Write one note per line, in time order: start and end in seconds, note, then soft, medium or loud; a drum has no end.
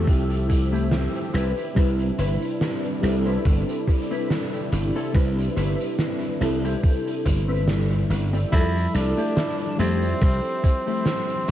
0.00 1.31 F3 medium
0.00 1.36 F3 medium
0.00 1.36 G3 medium
0.00 1.31 C4 medium
0.00 1.36 E4 medium
0.00 1.31 G4 medium
0.00 1.33 G4 medium
0.00 1.31 A4 medium
0.00 1.36 A4 medium
0.00 1.31 E5 medium
0.07 1.07 C2 medium
0.07 kick loud
0.07 closed hi-hat medium
0.30 closed hi-hat medium
0.49 muted clean electric guitar stroke medium
0.49 kick medium
0.49 closed hi-hat medium
0.72 0.92 A3 medium
0.72 0.92 E4 medium
0.72 0.92 G4 medium
0.72 closed hi-hat soft
0.91 snare loud
0.91 closed hi-hat medium
1.15 closed hi-hat medium
1.34 1.52 C2 medium
1.34 8.48 C3 medium
1.34 8.48 G3 medium
1.34 2.03 C4 medium
1.34 8.48 D4 medium
1.34 8.48 E4 medium
1.34 2.03 E4 medium
1.34 2.04 B4 loud
1.34 closed hi-hat medium
1.58 closed hi-hat medium
1.75 2.10 C2 medium
1.75 2.98 G3 medium
1.75 2.98 C4 medium
1.75 2.99 E4 medium
1.75 2.99 B4 medium
1.75 kick loud
1.75 closed hi-hat medium
1.99 closed hi-hat soft
2.18 2.36 G1 loud
2.18 2.42 C4 medium
2.18 2.42 E4 medium
2.18 2.42 B4 medium
2.18 closed hi-hat loud
2.42 closed hi-hat medium
2.61 snare loud
2.61 closed hi-hat medium
2.85 closed hi-hat soft
3.01 3.37 C2 loud
3.01 5.09 G3 medium
3.01 5.10 C4 medium
3.01 5.10 E4 medium
3.01 5.11 A4 medium
3.01 muted clean electric guitar stroke medium
3.01 closed hi-hat loud
3.26 3.45 C4 medium
3.26 3.46 E4 medium
3.26 3.46 B4 medium
3.26 closed hi-hat soft
3.45 3.63 G1 medium
3.45 kick loud
3.45 closed hi-hat medium
3.69 closed hi-hat medium
3.88 muted clean electric guitar stroke medium
3.88 kick loud
3.88 closed hi-hat medium
4.11 4.30 C4 medium
4.11 4.30 E4 medium
4.11 4.30 B4 medium
4.11 closed hi-hat medium
4.30 snare medium
4.30 closed hi-hat medium
4.53 closed hi-hat medium
4.72 4.90 G1 loud
4.72 muted clean electric guitar stroke medium
4.72 closed hi-hat loud
4.96 5.15 C4 medium
4.96 5.15 E4 medium
4.96 5.15 A4 medium
4.96 closed hi-hat medium
5.13 5.48 C2 medium
5.13 6.36 G3 medium
5.13 6.36 C4 medium
5.13 6.37 E4 medium
5.13 6.37 B4 medium
5.13 kick loud
5.13 closed hi-hat medium
5.39 closed hi-hat medium
5.56 5.75 G1 loud
5.56 5.80 C4 medium
5.56 5.80 E4 medium
5.56 5.80 B4 loud
5.56 closed hi-hat loud
5.81 closed hi-hat medium
5.99 snare loud
5.99 closed hi-hat medium
6.22 closed hi-hat soft
6.40 6.75 C2 loud
6.40 8.47 G3 medium
6.40 8.48 C4 medium
6.40 8.48 E4 medium
6.40 8.49 A4 medium
6.40 muted clean electric guitar stroke medium
6.40 closed hi-hat medium
6.64 6.84 C4 medium
6.64 6.84 E4 medium
6.64 6.84 G4 medium
6.64 closed hi-hat medium
6.83 kick loud
6.83 closed hi-hat medium
7.07 closed hi-hat medium
7.25 8.03 G1 medium
7.25 muted clean electric guitar stroke medium
7.25 kick medium
7.25 closed hi-hat medium
7.48 7.68 C4 medium
7.48 7.68 E4 medium
7.48 7.68 B4 medium
7.48 closed hi-hat soft
7.68 snare loud
7.68 closed hi-hat medium
7.91 closed hi-hat medium
8.10 8.44 G1 medium
8.10 muted clean electric guitar stroke medium
8.10 closed hi-hat loud
8.33 8.52 C4 medium
8.33 8.53 E4 medium
8.33 8.53 D5 medium
8.33 closed hi-hat soft
8.51 8.86 F2 loud
8.51 9.75 F3 medium
8.51 9.74 G3 medium
8.51 8.96 E4 loud
8.51 9.75 E4 medium
8.51 9.76 A4 medium
8.51 kick loud
8.51 closed hi-hat medium
8.76 closed hi-hat medium
8.94 9.12 C2 loud
8.94 9.79 D4 medium
8.94 muted clean electric guitar stroke medium
8.94 closed hi-hat loud
9.17 9.37 A3 medium
9.17 9.37 E4 medium
9.17 9.37 G4 medium
9.17 closed hi-hat medium
9.37 snare loud
9.37 closed hi-hat medium
9.59 closed hi-hat medium
9.78 10.13 F2 medium
9.78 11.51 F3 medium
9.78 11.51 G3 medium
9.78 10.03 A3 medium
9.78 11.51 C4 loud
9.78 10.03 E4 medium
9.78 10.03 G4 loud
9.78 11.51 G4 medium
9.78 11.51 E5 medium
9.78 closed hi-hat loud
10.02 closed hi-hat medium
10.22 10.39 C2 medium
10.22 kick loud
10.22 closed hi-hat medium
10.44 closed hi-hat medium
10.64 muted clean electric guitar stroke medium
10.64 kick loud
10.64 closed hi-hat medium
10.87 11.06 A3 medium
10.87 11.06 E4 medium
10.87 11.06 G4 medium
10.87 closed hi-hat medium
11.06 snare loud
11.06 closed hi-hat medium
11.30 closed hi-hat medium